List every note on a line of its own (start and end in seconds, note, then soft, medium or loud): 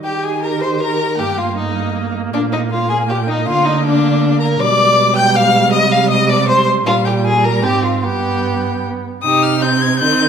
0.04 1.20 D#3 medium
0.04 1.15 G4 medium
0.04 0.24 G4 medium
0.04 0.26 G5 medium
0.23 0.42 G#4 medium
0.23 0.45 G#5 medium
0.42 0.62 A#4 medium
0.42 0.62 A#5 medium
0.60 0.81 C5 medium
0.60 0.70 C6 medium
0.80 1.20 A#4 medium
0.80 1.17 A#5 medium
1.18 2.33 G2 medium
1.18 3.43 A#3 medium
1.18 1.39 G4 medium
1.18 1.40 G5 medium
1.37 1.57 F4 medium
1.37 1.57 F5 medium
1.57 2.13 D#4 medium
1.57 2.14 D#5 medium
2.33 3.48 A#2 medium
2.33 2.41 D4 medium
2.33 2.41 D5 medium
2.52 2.60 D#4 medium
2.52 2.60 D#5 medium
2.71 2.89 F4 medium
2.71 2.91 F5 medium
2.89 2.97 G#4 medium
2.89 3.10 G#5 medium
3.08 3.17 G4 medium
3.08 3.30 G5 medium
3.28 3.46 D#4 medium
3.28 3.47 D#5 medium
3.46 4.60 D3 medium
3.46 4.56 A#3 medium
3.46 3.67 F4 loud
3.46 3.66 F5 medium
3.65 3.84 D#4 medium
3.65 3.85 D#5 medium
3.83 4.40 D4 medium
3.83 4.39 D5 medium
4.40 4.61 A#4 medium
4.40 4.48 A#5 medium
4.59 5.74 B2 medium
4.59 6.82 G3 medium
4.59 5.15 D5 loud
4.59 5.18 D6 loud
5.16 5.37 G5 loud
5.16 5.37 G6 medium
5.35 5.72 F5 loud
5.35 5.71 F6 medium
5.72 6.85 C3 medium
5.72 5.93 D#5 loud
5.72 5.80 D#6 medium
5.92 6.10 F5 loud
5.92 6.10 F6 medium
6.10 6.31 D#5 loud
6.10 6.29 D#6 medium
6.29 6.48 D5 loud
6.29 6.49 D6 medium
6.48 6.67 C5 loud
6.48 6.67 C6 medium
6.86 7.64 A#2 medium
6.86 7.65 G3 medium
6.86 6.94 F4 loud
6.86 7.07 F5 medium
7.05 7.13 G4 medium
7.05 7.26 G5 medium
7.24 7.46 G#4 medium
7.24 7.43 G#5 medium
7.44 7.63 A#4 medium
7.44 7.65 A#5 medium
7.63 8.05 G#2 medium
7.63 8.05 C4 medium
7.63 7.85 G4 medium
7.63 7.83 G5 medium
7.83 8.05 F4 medium
7.83 8.03 F5 medium
8.03 9.03 G2 medium
8.03 9.03 B3 medium
8.03 8.83 G4 medium
8.03 8.82 G5 medium
9.23 10.02 C3 medium
9.23 9.64 D#4 medium
9.23 9.62 G4 medium
9.23 9.44 D#6 loud
9.42 9.63 F6 medium
9.61 10.00 C4 medium
9.61 9.99 D#4 medium
9.61 9.83 G6 loud
9.81 9.99 G#6 loud
10.00 10.29 D#3 medium
10.00 10.29 C4 medium
10.00 10.29 D#4 medium
10.00 10.29 G6 loud